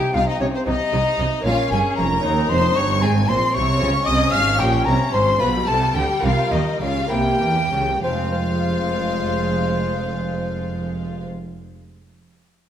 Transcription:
Already playing: C3 C4 D#4 G4 G5
0.14 C2 C3 D#4 F4 F5
0.27 D#4 D#5
0.40 C2 C3 C#4 D#4 C#5
0.54 C4 C5
0.66 C2 C3 D#4 D#5
0.93 C2 C3 D#4
1.19 C2 C3 D#4
1.41 A#1 A#3 C#4
1.45 A#2 C#4 F4 F5
1.71 G1 G2 G#4 G#5
1.96 F1 F2 A#4 A#5
2.21 D#2 C#4 D#4
2.49 F1 F2 C5 C6
2.76 G1 G2 C#5 C#6
2.98 G#1 G#3 C4 D#4 G#5
3.03 G#2 C4 G#4 G#5
3.28 A#1 A#2 C5 C6
3.54 C2 C3 C#5 C#6
3.77 C#2 G#3 C4 F4
3.81 C#3 C#4
4.06 C2 C3 D#5 D#6
4.32 G#1 G#2 F5 F6
4.58 A#1 A#2 C#4 G4 G5
4.85 C2 C3 A#4 A#5
5.13 G#1 G#2 C5 C6
5.38 B1 B2 G3 D4 F4 B4 B5
5.67 C2 C3 A4 A5
5.94 D2 D3 G4 G5
6.20 C2 C3 A#3 F4 F5
6.24 C3 F4
6.51 D#2 D#3 D#4 D#5
6.80 C#2 C#3 F4 F5
7.08 C2 C3 A#3 E4 G5
7.12 G4
7.41 E2 E3
7.72 C#2 C#3
8.03 F1 F2 F3 G#3 F4 C5 F5
8.11 G#3
8.18 C4
8.25 F4
8.32 C5

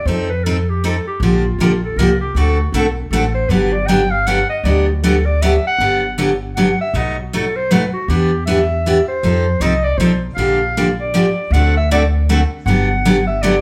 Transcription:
0.05 F2 F3 C4 D#4 A4 C5
0.29 B4
0.44 F3 C4 D#4 A4
0.69 G4
0.84 F3 C4 D#4 A4
1.07 G4
1.20 A#1 D3 F3 A#3 D4 F4 G4
1.59 A#1 D3 F3 A#3 D4 G4
1.84 A4
1.96 C2 D3 F3 A#3 D4 G4 A#4
2.21 G4
2.35 D2 D3 A3 C4 F#4 A4
2.72 B1 D3 A3 C4 F#4 A4
3.11 A1 D3 A3 C4 F#4 A4
3.34 C5
3.49 G1 D3 F#3 B3 D4 G4 B4
3.72 D5
3.87 D3 F#3 B3 D4 G4 G5
4.10 F5
4.27 D3 F#3 B3 D4 G4 F#5
4.49 D#5
4.64 D2 D3 F#3 B3 D4 G4 D5
4.88 F#4
5.03 D3 F#3 B3 D4 G4 A4
5.26 D5
5.42 D3 F#3 B3 D4 G4 E5
5.67 F#5
5.79 G1 D3 F#3 B3 D4 G4
6.18 D3 F#3 B3 D4 G4
6.56 D3 F#3 B3 D4 G4 F#5
6.81 E5
6.94 B1 B2 F#3 A3 D#4 F#4 D#5
7.20 F#4
7.33 B2 F#3 A3 D#4 F#4 A4
7.56 C5
7.71 B2 F#3 A3 D#4 F#4 B4
7.93 F#4
8.08 E2 E3 B3 D4 G4
8.46 E3 B3 D4 G4 E5
8.86 E3 B3 D4 G4
9.08 C5
9.23 F2 F3 C4 D#4 A4
9.60 C2 F3 C4 D#4 A4 D#5
9.84 D5
9.98 B1 F3 C4 D#4 A4 C5
10.35 A#1 D3 F3 A#3 D4 G4 F5
10.77 D3 F3 A#3 D4 G4
11.00 D5
11.14 D3 F3 A#3 D4 G4
11.51 D2 D3 A3 C4 F#4 F#5
11.55 A4
11.77 E5
11.91 D3 A3 C4 F#4 A4 D5
12.29 D3 A3 C4 F#4 A4
12.66 G1 D3 F#3 B3 D4 G4 F#5
13.05 D3 F#3 B3 D4 G4
13.27 E5
13.42 D3 F#3 B3 D4 G4 D5

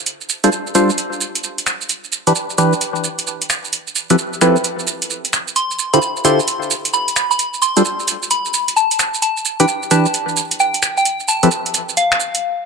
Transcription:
0.06 closed hi-hat, shaker
0.21 shaker
0.29 shaker
0.44 G3 D4 F4 A4 C5, closed hi-hat, shaker
0.52 shaker
0.67 shaker
0.75 G3 D4 F4 A4 C5, closed hi-hat, shaker
0.90 shaker
0.98 closed hi-hat, shaker
1.13 shaker
1.21 shaker
1.35 closed hi-hat, shaker
1.44 shaker
1.58 closed hi-hat, shaker
1.66 finger snap, closed hi-hat, shaker
1.81 shaker
1.89 closed hi-hat, shaker
2.04 shaker
2.12 shaker
2.27 E3 D4 G4 B4, closed hi-hat, shaker
2.35 shaker
2.50 shaker
2.58 E3 D4 G4 B4, closed hi-hat, shaker
2.73 shaker
2.81 closed hi-hat, shaker
2.96 shaker
3.04 shaker
3.19 closed hi-hat, shaker
3.27 shaker
3.42 closed hi-hat, shaker
3.50 finger snap, closed hi-hat, shaker
3.64 shaker
3.73 closed hi-hat, shaker
3.87 shaker
3.96 shaker
4.10 F3 C4 E4 G4 A4 B4, closed hi-hat, shaker
4.18 shaker
4.33 shaker
4.41 F3 C4 E4 G4 A4 B4, finger snap, closed hi-hat, shaker
4.56 shaker
4.64 closed hi-hat, shaker
4.79 shaker
4.87 shaker
5.02 closed hi-hat, shaker
5.10 shaker
5.25 closed hi-hat, shaker
5.33 finger snap, closed hi-hat, shaker
5.48 shaker
5.56 C6, closed hi-hat, shaker
5.71 shaker
5.79 shaker
5.93 D3 E4 F4 G4 A4 C5 B5, closed hi-hat, shaker
6.02 shaker
6.17 shaker
6.25 D3 E4 F4 G4 A4 C5 C6, closed hi-hat, shaker
6.39 shaker
6.48 closed hi-hat, shaker
6.62 shaker
6.71 shaker
6.85 closed hi-hat, shaker
6.93 B5, shaker
7.08 closed hi-hat, shaker
7.16 finger snap, closed hi-hat, shaker
7.31 B5, shaker
7.39 closed hi-hat, shaker
7.54 shaker
7.62 C6, shaker
7.77 G3 D4 F4 A4 C5, closed hi-hat, shaker
7.85 shaker
8.00 shaker
8.08 closed hi-hat, shaker
8.23 shaker
8.31 B5, closed hi-hat, shaker
8.45 shaker
8.54 shaker
8.68 closed hi-hat, shaker
8.76 A5, shaker
8.91 closed hi-hat, shaker
8.99 finger snap, closed hi-hat, shaker
9.14 shaker
9.22 A5, closed hi-hat, shaker
9.37 shaker
9.45 shaker
9.60 E3 D4 G4 B4 G5, closed hi-hat, shaker
9.68 shaker
9.83 shaker
9.91 E3 D4 G4 B4 A5, closed hi-hat, shaker
10.06 shaker
10.14 closed hi-hat, shaker
10.29 shaker
10.37 shaker
10.51 closed hi-hat, shaker
10.60 G5, shaker
10.74 closed hi-hat, shaker
10.83 finger snap, closed hi-hat, shaker
10.97 G5, shaker
11.05 closed hi-hat, shaker
11.20 shaker
11.28 A5, shaker
11.43 F3 C4 E4 G4 A4 B4, closed hi-hat, shaker
11.51 shaker
11.66 closed hi-hat, shaker
11.74 closed hi-hat, shaker
11.89 shaker
11.97 F5, closed hi-hat, shaker
12.12 finger snap, shaker
12.20 shaker
12.35 closed hi-hat, shaker

